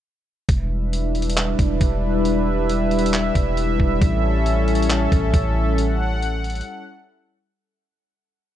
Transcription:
0.49 808-style bass E1, analog synth pad G3 D4 E4 B4 E5, kick, closed hi-hat
0.93 closed hi-hat
1.15 closed hi-hat
1.22 closed hi-hat
1.30 closed hi-hat
1.37 clap, closed hi-hat
1.59 808-style bass E1, kick, closed hi-hat
1.81 808-style bass E1, kick, closed hi-hat
2.25 closed hi-hat
2.69 closed hi-hat
2.91 closed hi-hat, open hi-hat
2.99 closed hi-hat
3.06 closed hi-hat
3.13 clap, closed hi-hat
3.35 808-style bass E1, kick, closed hi-hat
3.57 closed hi-hat
3.79 808-style bass E1, kick
4.02 808-style bass A1, analog synth pad C#4 A4, kick, closed hi-hat
4.46 closed hi-hat
4.68 closed hi-hat
4.75 closed hi-hat
4.82 closed hi-hat
4.90 clap, closed hi-hat
5.12 808-style bass A1, kick, closed hi-hat
5.34 808-style bass A1, kick, closed hi-hat
5.78 analog synth pad F#5, closed hi-hat
6.22 closed hi-hat
6.44 closed hi-hat
6.50 closed hi-hat
6.55 closed hi-hat
6.61 closed hi-hat

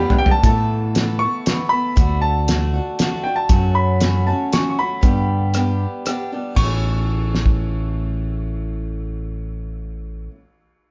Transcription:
Already playing: steel-string acoustic guitar G3 B3 D4 G4, upright piano G4, grand piano B5
0.10 floor tom
0.18 grand piano G5
0.26 floor tom
0.31 grand piano A5
0.43 fingered electric bass A2, steel-string acoustic guitar A2 E3 A3 B3 A4, grand piano A5, kick, closed hi-hat
0.95 steel-string acoustic guitar E3 A3 B3 A4, snare, closed hi-hat
1.19 steel-string acoustic guitar A3 B3 A4, grand piano C#6
1.46 steel-string acoustic guitar E3 A3 B3 A4, snare, closed hi-hat
1.69 steel-string acoustic guitar A3 B3 A4, grand piano B5
1.96 fingered electric bass D2, steel-string acoustic guitar D3 A3 D4 F#4, kick, closed hi-hat
2.22 grand piano A5
2.48 steel-string acoustic guitar D3 A3 D4 F#4, snare, closed hi-hat
2.73 steel-string acoustic guitar A3 D4 F#4
2.99 steel-string acoustic guitar D3 A3 D4 F#4, snare, closed hi-hat
3.24 steel-string acoustic guitar A3 D4 F#4, grand piano G5
3.36 grand piano A5
3.49 steel-string acoustic guitar F#2 C#3 F#3 A3 C#4 F#4, fingered electric bass F#2, kick, closed hi-hat
3.75 grand piano B5
4.00 steel-string acoustic guitar F#3 A3 C#4 F#4, snare, closed hi-hat
4.27 steel-string acoustic guitar F#3 A3 C#4 F#4, grand piano A5
4.53 steel-string acoustic guitar F#3 A3 C#4 F#4, grand piano C#6, snare, closed hi-hat
4.70 grand piano C#6
4.78 steel-string acoustic guitar F#3 A3 C#4 F#4, grand piano B5
5.01 steel-string acoustic guitar G2 D3 G3 B3 D4 G4, fingered electric bass G2, kick, closed hi-hat
5.54 steel-string acoustic guitar G3 B3 D4 G4, cross-stick, closed hi-hat
6.05 steel-string acoustic guitar G3 B3 D4 G4, cross-stick, closed hi-hat
6.32 steel-string acoustic guitar G3 B3 D4 G4
6.55 fingered electric bass A1, steel-string acoustic guitar A2 E3, grand piano C#6, kick, ride
6.61 steel-string acoustic guitar A3 C#4 A4
7.35 snare
7.46 kick

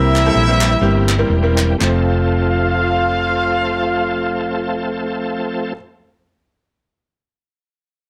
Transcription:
Already playing: fingered electric bass C2, grand piano C3 G3 A#3 C4 E4 A#4, tonewheel organ E3 G3 A#3 C4 G4, horn section E4 G4 A#4 E5
0.16 clap
0.25 grand piano G3 A#3 C4 E4 A4
0.35 fingered electric bass A#1
0.48 grand piano G3 A#3 C4 E4 A#4
0.61 clap
0.81 fingered electric bass G1, grand piano G3 A#3 C4 E4 G4
1.09 clap
1.18 grand piano G3 A#3 C4 E4 A#4
1.30 fingered electric bass E1
1.43 grand piano G3 A#3 C4 E4 A#4
1.58 clap
1.78 fingered electric bass F1, grand piano F2 A3 C4 F4, tonewheel organ F3 A3 C4 A4, horn section F4 F5, clap
1.83 grand piano C5

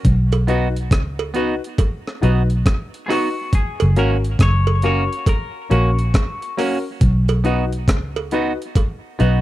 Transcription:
0.05 fingered electric bass B1, kick, closed hi-hat
0.32 closed hi-hat, cowbell
0.47 clean electric guitar B3 D#4 F#4, upright piano D#4 F#4 B4, closed hi-hat
0.76 closed hi-hat
0.91 fingered electric bass C#2, kick, cross-stick, closed hi-hat
1.19 cowbell
1.34 clean electric guitar B3 D#4 F#4, upright piano D#4 F#4 B4, closed hi-hat
1.64 closed hi-hat
1.78 kick, closed hi-hat, cowbell
2.07 cross-stick
2.21 fingered electric bass B1, clean electric guitar B3 D#4 F#4, upright piano D#4 F#4 B4, closed hi-hat
2.50 closed hi-hat
2.66 kick, cross-stick, closed hi-hat
2.94 closed hi-hat
3.06 clean electric guitar B3 D#4 F#4 G#4, upright piano D#4 F#4 B4
3.10 clean electric guitar F#4, cross-stick, open hi-hat
3.53 clean electric guitar G#4, kick, closed hi-hat
3.80 fingered electric bass F#1, closed hi-hat, cowbell
3.96 fingered electric bass G#1, clean electric guitar A#3 C#4 F#4 A#4, upright piano C#4 F#4 A#4, closed hi-hat
4.24 closed hi-hat
4.39 fingered electric bass F#1, clean electric guitar C#5, kick, cross-stick, closed hi-hat
4.67 cowbell
4.82 clean electric guitar A#3 C#4 F#4 C#5, upright piano C#4 F#4 A#4, closed hi-hat
5.13 closed hi-hat
5.26 clean electric guitar A#4, kick, closed hi-hat, cowbell
5.70 fingered electric bass A#1, clean electric guitar A#3 C#4 F#4, upright piano C#4 F#4 A#4, closed hi-hat
5.99 closed hi-hat
6.14 kick, cross-stick, closed hi-hat
6.42 closed hi-hat
6.57 clean electric guitar A#3 C#4 F#4, upright piano C#4 F#4 A#4, cross-stick, open hi-hat
7.01 fingered electric bass B1, kick, closed hi-hat
7.28 closed hi-hat, cowbell
7.44 clean electric guitar B3 D#4 F#4, upright piano D#4 F#4 B4, closed hi-hat
7.72 closed hi-hat
7.88 fingered electric bass C#2, kick, cross-stick, closed hi-hat
8.16 cowbell
8.31 clean electric guitar B3 D#4 F#4, upright piano D#4 F#4 B4, closed hi-hat
8.62 closed hi-hat
8.75 kick, closed hi-hat, cowbell
9.19 fingered electric bass B1, clean electric guitar B3 D#4 F#4, upright piano D#4 F#4 B4, closed hi-hat

